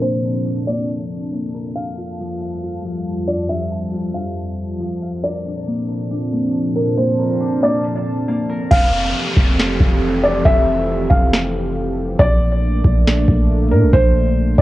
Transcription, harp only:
0.00 0.67 A#3 medium
0.00 0.44 D4 medium
0.00 0.24 A#4 medium
0.24 1.54 A#4 medium
0.45 3.25 D4 medium
0.68 1.32 A#3 medium
1.33 3.78 A#3 medium
1.54 3.66 A#4 medium
1.76 2.41 F5 medium
1.98 2.63 F4 medium
2.20 2.83 F3 medium
2.41 4.07 F5 medium
2.63 3.28 F4 medium
2.84 3.49 F3 medium
3.28 3.93 F4 medium
3.50 4.14 F3 loud
3.72 5.17 A5 medium
3.93 6.45 F4 medium
4.15 4.79 F3 medium
4.80 5.29 F3 medium
5.02 6.68 F5 medium
5.23 5.88 A#4 loud
5.46 6.10 D4 medium
5.67 6.32 A#3 medium
5.89 7.19 A#4 medium
6.11 6.76 D4 medium
6.33 6.97 A#3 medium
6.76 7.40 D4 medium
6.97 7.63 A#3 medium
7.19 8.49 A#4 medium
7.40 10.20 D4 medium
7.63 8.28 A#3 medium
8.28 11.50 A#3 medium
8.50 10.62 A#4 medium

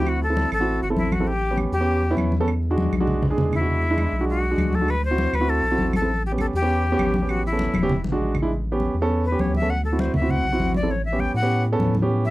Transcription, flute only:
0.00 0.10 G4 medium
0.09 0.23 F#4 medium
0.23 0.51 A4 loud
0.53 0.80 A4 medium
0.83 0.89 F#4 medium
0.97 1.14 E4 medium
1.12 1.29 F#4 medium
1.27 1.57 G4 medium
1.73 2.14 G4 medium
3.54 4.25 E4 medium
4.29 4.76 F#4 medium
4.75 4.92 A4 medium
4.90 5.04 B4 loud
5.05 5.37 C5 loud
5.35 5.51 B4 loud
5.50 5.94 A4 loud
5.96 6.23 A4 medium
6.26 6.32 G4 medium
6.40 6.46 A4 medium
6.55 7.32 G4 loud
7.30 7.45 F#4 medium
7.46 8.01 E4 medium
9.25 9.42 B4 medium
9.41 9.55 C#5 medium
9.55 9.72 E5 medium
9.70 9.84 F#5 medium
9.85 10.02 A4 medium
10.00 10.15 C5 medium
10.15 10.32 E5 medium
10.30 10.75 F#5 medium
10.76 10.92 D5 medium
10.91 11.05 C#5 medium
11.05 11.22 E5 medium
11.20 11.35 G5 medium
11.36 11.63 F#5 medium
12.25 12.30 E5 medium

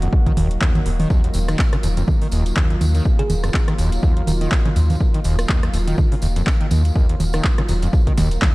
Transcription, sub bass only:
0.37 0.57 D#1 loud
0.86 1.06 D#1 medium
1.35 1.55 D#1 loud
1.83 2.03 D#1 medium
2.32 2.52 D#1 loud
2.81 3.01 D#2 medium
3.30 3.50 D#1 loud
3.78 3.98 D#1 medium
4.27 4.47 D#1 loud
4.76 4.96 D#2 medium
5.25 5.45 D#1 loud
5.74 5.94 D#1 medium
6.22 6.42 D#1 loud
6.71 6.91 D#2 medium
7.20 7.40 D#1 loud
7.69 7.89 D#1 medium
8.17 8.37 D#1 loud

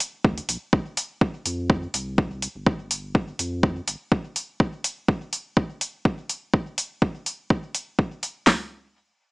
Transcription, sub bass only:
0.24 0.40 D2 medium
0.49 0.57 A#1 medium
0.73 0.81 C2 loud
1.46 1.87 F2 loud
1.94 2.47 C2 medium
2.55 3.32 G1 medium
3.39 3.81 F2 medium
3.88 3.95 G1 medium

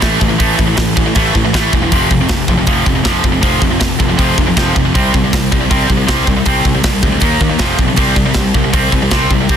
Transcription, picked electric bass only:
0.02 0.17 A1 medium
0.21 0.36 A1 medium
0.40 0.54 A1 loud
0.59 0.74 A1 medium
0.78 0.92 A1 medium
0.96 1.11 A1 medium
1.16 1.30 A1 medium
1.35 1.50 A1 medium
1.54 1.69 A1 loud
1.73 1.87 E1 medium
1.92 2.07 F1 medium
2.11 2.25 F1 medium
2.30 2.44 F1 medium
2.48 2.63 F1 medium
2.67 2.82 F1 medium
2.86 3.01 F1 medium
3.05 3.20 F1 medium
3.23 3.38 F1 medium
3.43 3.57 F1 medium
3.62 3.76 F1 medium
3.81 3.96 F1 medium
4.00 4.14 F1 medium
4.19 4.33 F1 medium
4.38 4.53 F1 medium
4.57 4.71 F1 medium
4.76 4.91 F1 medium
4.95 5.10 C2 medium
5.14 5.29 C2 medium
5.33 5.47 C2 medium
5.52 5.67 C2 medium
5.71 5.85 C2 medium
5.90 6.04 C2 medium
6.09 6.23 C2 medium
6.27 6.42 C2 medium
6.46 6.61 C2 medium
6.65 6.80 C2 medium
6.84 6.99 C2 medium
7.03 7.18 D2 medium
7.22 7.36 D#2 medium
7.41 7.55 D#2 medium
7.60 7.74 F1 medium
7.79 7.93 B1 medium
7.97 8.12 C2 loud
8.16 8.31 C2 medium
8.35 8.50 C2 medium
8.55 8.69 C2 medium
8.73 8.88 C2 medium
8.92 9.07 C2 medium
9.11 9.26 C2 medium
9.31 9.45 C2 medium
9.49 9.57 C2 medium

